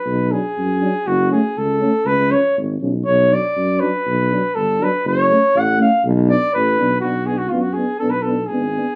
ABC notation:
X:1
M:2/4
L:1/16
Q:1/4=121
K:none
V:1 name="Flugelhorn"
B2 ^G6 | ^F2 ^G2 A4 | B2 ^c2 z4 | ^c2 d4 B2- |
B4 A2 B2 | ^c4 ^f2 ^e2 | z2 d2 B4 | ^F2 ^G F ^E F G2 |
A B A2 ^G4 |]
V:2 name="Euphonium"
z2 D2 z2 D2 | z2 ^C2 z2 C2 | z2 ^C2 z2 C2 | z2 D2 z2 D2 |
z2 D2 z2 D2 | z2 ^C2 z2 C2 | z2 D2 z2 D2 | D2 D2 D2 D2 |
D2 D2 D2 D2 |]
V:3 name="Euphonium"
z2 ^F,2 z2 F,2 | z2 A,2 z2 A,2 | z2 ^E,2 z2 E,2 | z2 ^F,2 z2 F,2 |
z2 ^F,2 z2 F,2 | z2 A,2 z2 A,2 | z2 B,2 z2 B,2 | B,2 B,2 B,2 B,2 |
B,2 B,2 B,2 B,2 |]
V:4 name="Tuba" clef=bass
B,,,4 ^F,,4 | ^F,,,4 ^C,,4 | ^C,,4 ^G,,,2 B,,,2 | B,,,4 ^F,,4 |
B,,,4 G,,,4 | ^F,,,4 A,,,4 | B,,,4 A,,,2 B,,,2 | B,,,4 ^F,,4 |
B,,,4 ^G,,,4 |]